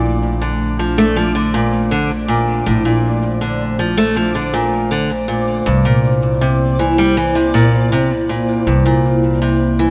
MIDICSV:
0, 0, Header, 1, 5, 480
1, 0, Start_track
1, 0, Key_signature, -2, "major"
1, 0, Tempo, 750000
1, 1710, Time_signature, 4, 2, 24, 8
1, 6338, End_track
2, 0, Start_track
2, 0, Title_t, "Synth texture"
2, 0, Program_c, 0, 99
2, 0, Note_on_c, 0, 74, 77
2, 0, Note_on_c, 0, 86, 76
2, 6338, Note_off_c, 0, 74, 0
2, 6338, Note_off_c, 0, 86, 0
2, 6338, End_track
3, 0, Start_track
3, 0, Title_t, "Ambient pad"
3, 0, Program_c, 1, 92
3, 0, Note_on_c, 1, 57, 73
3, 0, Note_on_c, 1, 62, 68
3, 0, Note_on_c, 1, 72, 81
3, 3605, Note_off_c, 1, 57, 0
3, 3606, Note_off_c, 1, 62, 0
3, 3629, Note_on_c, 1, 64, 63
3, 3630, Note_on_c, 1, 58, 75
3, 6338, Note_off_c, 1, 58, 0
3, 6338, Note_off_c, 1, 64, 0
3, 6338, Note_off_c, 1, 72, 0
3, 6338, End_track
4, 0, Start_track
4, 0, Title_t, "Steel-string acoustic guitar"
4, 0, Program_c, 2, 25
4, 0, Note_on_c, 2, 46, 65
4, 256, Note_off_c, 2, 46, 0
4, 266, Note_on_c, 2, 50, 61
4, 496, Note_off_c, 2, 50, 0
4, 507, Note_on_c, 2, 53, 64
4, 617, Note_off_c, 2, 53, 0
4, 627, Note_on_c, 2, 57, 85
4, 737, Note_off_c, 2, 57, 0
4, 744, Note_on_c, 2, 53, 68
4, 855, Note_off_c, 2, 53, 0
4, 863, Note_on_c, 2, 50, 65
4, 975, Note_off_c, 2, 50, 0
4, 986, Note_on_c, 2, 46, 86
4, 1216, Note_off_c, 2, 46, 0
4, 1224, Note_on_c, 2, 50, 65
4, 1341, Note_off_c, 2, 50, 0
4, 1462, Note_on_c, 2, 46, 64
4, 1694, Note_off_c, 2, 46, 0
4, 1705, Note_on_c, 2, 45, 66
4, 1815, Note_off_c, 2, 45, 0
4, 1825, Note_on_c, 2, 46, 66
4, 2176, Note_off_c, 2, 46, 0
4, 2183, Note_on_c, 2, 50, 61
4, 2415, Note_off_c, 2, 50, 0
4, 2426, Note_on_c, 2, 53, 63
4, 2536, Note_off_c, 2, 53, 0
4, 2544, Note_on_c, 2, 57, 78
4, 2655, Note_off_c, 2, 57, 0
4, 2663, Note_on_c, 2, 53, 66
4, 2775, Note_off_c, 2, 53, 0
4, 2783, Note_on_c, 2, 50, 63
4, 2895, Note_off_c, 2, 50, 0
4, 2903, Note_on_c, 2, 46, 75
4, 3135, Note_off_c, 2, 46, 0
4, 3142, Note_on_c, 2, 50, 62
4, 3260, Note_off_c, 2, 50, 0
4, 3380, Note_on_c, 2, 46, 64
4, 3613, Note_off_c, 2, 46, 0
4, 3623, Note_on_c, 2, 43, 66
4, 3734, Note_off_c, 2, 43, 0
4, 3744, Note_on_c, 2, 46, 59
4, 4095, Note_off_c, 2, 46, 0
4, 4105, Note_on_c, 2, 48, 67
4, 4335, Note_off_c, 2, 48, 0
4, 4347, Note_on_c, 2, 52, 65
4, 4457, Note_off_c, 2, 52, 0
4, 4468, Note_on_c, 2, 55, 82
4, 4577, Note_off_c, 2, 55, 0
4, 4589, Note_on_c, 2, 52, 66
4, 4698, Note_off_c, 2, 52, 0
4, 4706, Note_on_c, 2, 48, 65
4, 4816, Note_off_c, 2, 48, 0
4, 4826, Note_on_c, 2, 46, 86
4, 5056, Note_off_c, 2, 46, 0
4, 5069, Note_on_c, 2, 48, 66
4, 5184, Note_off_c, 2, 48, 0
4, 5308, Note_on_c, 2, 46, 59
4, 5537, Note_off_c, 2, 46, 0
4, 5548, Note_on_c, 2, 43, 64
4, 5657, Note_off_c, 2, 43, 0
4, 5668, Note_on_c, 2, 46, 59
4, 6017, Note_off_c, 2, 46, 0
4, 6027, Note_on_c, 2, 48, 65
4, 6256, Note_off_c, 2, 48, 0
4, 6267, Note_on_c, 2, 52, 68
4, 6338, Note_off_c, 2, 52, 0
4, 6338, End_track
5, 0, Start_track
5, 0, Title_t, "Upright bass"
5, 0, Program_c, 3, 32
5, 0, Note_on_c, 3, 34, 76
5, 1685, Note_off_c, 3, 34, 0
5, 1708, Note_on_c, 3, 34, 70
5, 3605, Note_off_c, 3, 34, 0
5, 3628, Note_on_c, 3, 36, 71
5, 5525, Note_off_c, 3, 36, 0
5, 5547, Note_on_c, 3, 36, 73
5, 6338, Note_off_c, 3, 36, 0
5, 6338, End_track
0, 0, End_of_file